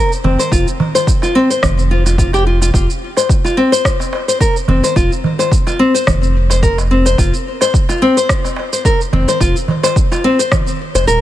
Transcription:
Already playing: nylon-string guitar A#4
0.12 shaker
0.24 sub bass F1, nylon-string guitar C4, darbuka dum
0.39 nylon-string guitar C5, darbuka ka, shaker
0.52 sub bass F1, nylon-string guitar F4, kick, shaker
0.68 shaker
0.80 darbuka dum
0.95 nylon-string guitar C5, darbuka ka, shaker
1.07 kick, shaker
1.22 nylon-string guitar F4, darbuka ka, shaker
1.35 nylon-string guitar C4
1.50 nylon-string guitar C5, shaker
1.63 sub bass F1, kick, cross-stick, darbuka dum, shaker
1.79 shaker
1.91 nylon-string guitar F4
2.06 nylon-string guitar F4, darbuka ka, darbuka tek, shaker
2.18 nylon-string guitar F4, kick, shaker
2.33 nylon-string guitar G4, darbuka ka, darbuka tek, shaker
2.47 nylon-string guitar F4
2.61 nylon-string guitar F4, darbuka ka, shaker
2.74 sub bass F1, nylon-string guitar F4, kick, shaker
2.90 shaker
3.17 nylon-string guitar C5, darbuka ka, shaker
3.29 kick, shaker
3.45 nylon-string guitar F4, darbuka ka, shaker
3.57 nylon-string guitar C4
3.72 nylon-string guitar C5, shaker
3.85 kick, cross-stick, shaker
4.00 darbuka ka, shaker
4.13 darbuka tek
4.28 nylon-string guitar C5, shaker
4.41 nylon-string guitar A#4, kick, shaker
4.56 shaker
4.68 sub bass F1, nylon-string guitar C4, darbuka dum
4.84 nylon-string guitar C5, darbuka ka, shaker
4.96 sub bass F1, nylon-string guitar F4, kick, shaker
5.12 shaker
5.24 darbuka dum
5.39 nylon-string guitar C5, darbuka ka, shaker
5.52 kick, shaker
5.67 nylon-string guitar F4, darbuka ka, shaker
5.79 nylon-string guitar C4
5.95 nylon-string guitar C5, shaker
6.07 sub bass F1, kick, cross-stick, darbuka dum, shaker
6.23 shaker
6.50 nylon-string guitar C5, darbuka ka, darbuka tek, shaker
6.63 nylon-string guitar A#4, kick, shaker
6.78 darbuka ka, darbuka tek, shaker
6.91 nylon-string guitar C4
7.06 nylon-string guitar C5, darbuka ka, shaker
7.18 sub bass F1, nylon-string guitar F4, kick, shaker
7.34 shaker
7.61 nylon-string guitar C5, darbuka ka, shaker
7.74 kick, shaker
7.89 nylon-string guitar F4, darbuka ka, shaker
8.02 nylon-string guitar C4
8.17 nylon-string guitar C5, shaker
8.29 kick, cross-stick, shaker
8.45 darbuka ka, shaker
8.56 darbuka tek
8.73 nylon-string guitar C5, shaker
8.85 nylon-string guitar A#4, kick, shaker
9.01 shaker
9.13 sub bass F1, nylon-string guitar C4, darbuka dum
9.28 nylon-string guitar C5, darbuka ka, shaker
9.41 sub bass F1, nylon-string guitar F4, kick, shaker
9.56 shaker
9.68 darbuka tek, darbuka dum
9.83 nylon-string guitar C5, darbuka ka, shaker
9.96 kick, shaker
10.12 nylon-string guitar F4, darbuka ka, shaker
10.24 nylon-string guitar C4
10.39 nylon-string guitar C5, shaker
10.52 kick, cross-stick, darbuka dum, shaker
10.68 shaker
10.95 sub bass F1, nylon-string guitar C5, darbuka ka, darbuka tek, shaker
11.07 sub bass D#1, nylon-string guitar A#4, shaker

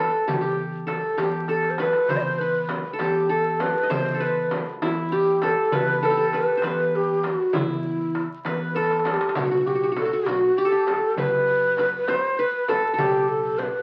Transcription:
Already playing: ney A4, qanun A4 B4
0.27 fretless electric bass E2, ney G4, qanun G4, darbuka dum, frame drum
0.34 ney F#4
0.41 qanun G4, ney G4
0.58 darbuka ka
0.87 qanun A4, ney A4, darbuka tek, frame drum
1.17 fretless electric bass E2, qanun G4, ney G4, darbuka tek, frame drum
1.48 ney A4, qanun A4, darbuka tek
1.63 darbuka ka
1.70 ney C5
1.78 qanun B4, ney C5, darbuka tek, frame drum
1.82 ney B4
1.93 darbuka ka
2.08 fretless electric bass E2, ney C5, qanun C5, darbuka dum, frame drum
2.17 ney D#5
2.22 ney C5
2.38 ney B4, qanun B4
2.69 darbuka tek, frame drum
2.93 qanun A4
2.99 fretless electric bass E2, qanun G4, ney G4, darbuka tek, frame drum
3.29 qanun A4, ney A4
3.60 ney B4, darbuka tek, frame drum
3.83 qanun D#5
3.90 fretless electric bass E2, qanun C5, ney C5, frame drum, darbuka dum
4.14 qanun A4
4.20 qanun B4, ney B4
4.51 darbuka tek, frame drum
4.81 fretless electric bass E2, qanun E4, ney F#4, darbuka tek, frame drum
4.88 ney E4
5.12 qanun G4, ney G4
5.42 qanun A4, ney B4, darbuka tek, frame drum
5.48 ney A4
5.72 fretless electric bass E2, qanun B4, ney B4, darbuka dum, frame drum
6.03 qanun A4, ney A4
6.10 qanun G4
6.17 qanun A4
6.32 qanun B4, ney B4, darbuka tek, frame drum
6.57 qanun C5
6.62 fretless electric bass E2, qanun B4, darbuka tek, frame drum
6.67 ney B4
6.95 ney G4
7.24 ney F#4, darbuka tek, frame drum
7.53 fretless electric bass E2, qanun E4, ney E4, frame drum, darbuka dum
7.86 darbuka ka
8.15 darbuka tek
8.45 fretless electric bass E2, qanun B4, ney B4, darbuka tek, frame drum
8.75 ney A4, qanun A4, darbuka tek
8.84 darbuka ka
8.91 darbuka tek
8.99 darbuka ka
9.05 ney G4, darbuka tek, frame drum
9.14 darbuka ka
9.21 darbuka tek
9.29 ney G4, darbuka ka
9.35 fretless electric bass B1, ney F#4, qanun F#4, frame drum, darbuka dum
9.45 qanun F#4
9.51 qanun F#4
9.61 qanun F#4
9.67 qanun F#4, ney G4
9.75 qanun F#4
9.83 qanun F#4
9.92 qanun F#4
9.96 qanun F#4, ney A4, darbuka tek, frame drum
10.05 qanun F#4
10.13 qanun F#4
10.26 fretless electric bass B1, ney F#4, qanun F#4, darbuka tek, frame drum
10.57 ney G4, qanun G4
10.65 qanun A4
10.72 qanun G4
10.87 ney A4, darbuka tek, frame drum
11.16 fretless electric bass F#2, qanun B4, ney C5, darbuka dum, frame drum
11.22 ney B4
11.77 qanun B4, darbuka tek, frame drum
12.08 ney C5, qanun C5, darbuka tek, frame drum
12.38 ney B4, qanun B4
12.68 ney A4, qanun A4, darbuka tek, frame drum
12.94 ney G4, qanun A4
12.98 fretless electric bass B1, qanun G4, frame drum, darbuka dum
13.28 ney A4
13.58 ney C5, frame drum
13.62 ney B4

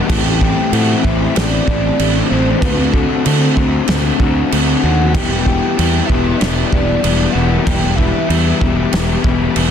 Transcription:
Already playing: soft synth lead F#5, string machine D6
0.08 fingered electric bass A1, overdriven electric guitar A2 E3 A3 C4 E4, string machine C4 G4 B5, soft synth lead G5, kick, crash
0.40 overdriven electric guitar A3 C4 E4, kick
0.72 fingered electric bass A2, overdriven electric guitar E3 A3 C4 E4, soft synth lead F#5, crash
1.02 fingered electric bass A1, overdriven electric guitar A3 C4 E4, soft synth lead E5, kick
1.34 fingered electric bass A1, overdriven electric guitar A2 E3 A3 C4 E4, soft synth lead D5, snare, crash
1.67 fingered electric bass A1, overdriven electric guitar A3 C4 E4, kick
1.99 fingered electric bass A1, overdriven electric guitar E3 A3 C4 E4, crash
2.29 fingered electric bass A1, overdriven electric guitar A3 C4 E4, soft synth lead C5
2.61 fingered electric bass D2, overdriven electric guitar D3 A3 C4 F#4, soft synth lead B4, string machine E5 B5 E6, kick, crash
2.92 overdriven electric guitar A3 C4 F#4, soft synth lead A4, kick
3.24 overdriven electric guitar D3 A3 C4 F#4, fingered electric bass D3, crash
3.56 fingered electric bass D2, overdriven electric guitar A3 C4 F#4, kick
3.88 fingered electric bass D2, overdriven electric guitar D3 A3 C4 F#4, snare, crash
4.20 fingered electric bass D2, overdriven electric guitar A3 C4 F#4, kick
4.51 fingered electric bass D2, overdriven electric guitar D3 A3 C4 F#4, crash
4.81 fingered electric bass D#2, overdriven electric guitar C4 F#4, soft synth lead F#5
4.85 overdriven electric guitar A3
5.12 fingered electric bass E1, overdriven electric guitar E3 G3 B3, string machine G4 A5 D6, soft synth lead G5, kick, crash
5.16 overdriven electric guitar E4
5.45 overdriven electric guitar G3 B3 E4, kick
5.76 fingered electric bass E2, overdriven electric guitar E3 G3 B3 E4, crash
6.05 overdriven electric guitar E4, soft synth lead E5
6.09 fingered electric bass E1, overdriven electric guitar G3 B3, kick
6.37 overdriven electric guitar E3 G3, soft synth lead D5
6.41 fingered electric bass E1, overdriven electric guitar B3 E4, snare, crash
6.71 fingered electric bass E1, overdriven electric guitar G3 B3 E4, kick
7.02 fingered electric bass E1, overdriven electric guitar E3 G3 B3 E4, crash
7.31 fingered electric bass E1, overdriven electric guitar B3 E4, soft synth lead F#5
7.36 overdriven electric guitar G3
7.62 overdriven electric guitar E3 G3, soft synth lead G5, string machine B5
7.66 fingered electric bass E1, overdriven electric guitar B3 E4, kick, crash
7.96 overdriven electric guitar G3 B3 E4, soft synth lead E5, kick
8.27 fingered electric bass E2, overdriven electric guitar E3 G3 B3 E4, crash
8.60 fingered electric bass E1, overdriven electric guitar G3 B3 E4, kick
8.91 fingered electric bass E1, overdriven electric guitar E3 G3 B3 E4, snare, crash
9.23 fingered electric bass E1, overdriven electric guitar G3 B3 E4, kick
9.54 fingered electric bass E1, overdriven electric guitar E3 G3 B3 E4, crash

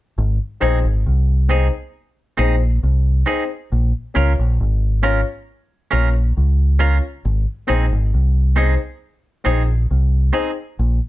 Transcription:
0.18 fingered electric bass G#1
0.60 fingered electric bass A#1, upright piano C4 D#4 G#4 C5, clean electric guitar C4 D#4 G#4
0.84 fingered electric bass G#1
1.06 fingered electric bass C2
1.48 upright piano C4 D#4 G#4 C5, clean electric guitar C4 D#4 G#4
2.37 fingered electric bass A#1, upright piano C4 D#4 G#4 C5, clean electric guitar C4 D#4 G#4
2.83 fingered electric bass C2
3.26 upright piano C4 D#4 G#4 C5, clean electric guitar C4 D#4 G#4
3.72 fingered electric bass A#1
4.14 fingered electric bass C#2, upright piano C#4 F4 A#4 C#5, clean electric guitar C#4 F4 A#4
4.39 fingered electric bass A#1
4.60 fingered electric bass G#1
5.02 upright piano C#4 F4 A#4 C#5, clean electric guitar C#4 F4 A#4
5.91 fingered electric bass A#1, clean electric guitar C#4 F4 A#4, upright piano C#4 F4 A#4 C#5
6.14 muted clean electric guitar stroke
6.37 fingered electric bass C#2
6.79 upright piano C#4 F4 A#4 C#5, clean electric guitar C#4 F4 A#4
7.25 fingered electric bass G#1
7.67 fingered electric bass A#1, upright piano C4 D#4 G#4 C5, clean electric guitar C4 D#4 G#4
7.92 fingered electric bass G#1
8.14 fingered electric bass C2
8.55 upright piano C4 D#4 G#4 C5, clean electric guitar C4 D#4 G#4
9.44 fingered electric bass A#1, upright piano C4 D#4 G#4 C5, clean electric guitar C4 D#4 G#4
9.91 fingered electric bass C2
10.32 upright piano C4 D#4 G#4 C5, clean electric guitar C4 D#4 G#4
10.79 fingered electric bass A#1

